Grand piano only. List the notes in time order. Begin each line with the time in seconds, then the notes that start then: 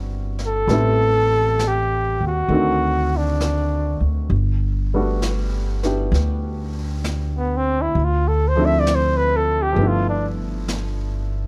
Already playing: G3 B3 C4 D4 E4 F#4
0.68 G3 A3 B3
0.72 C4 E4
2.49 D#3 A3 C4 D4
2.54 F#4
4.94 G3 A3 B3 D4 F#4
5.83 B3 D4 E4 G4
8.56 F3 A3 C4
8.60 D4 E4
9.72 F3 A3
9.78 B3 D4
9.83 E4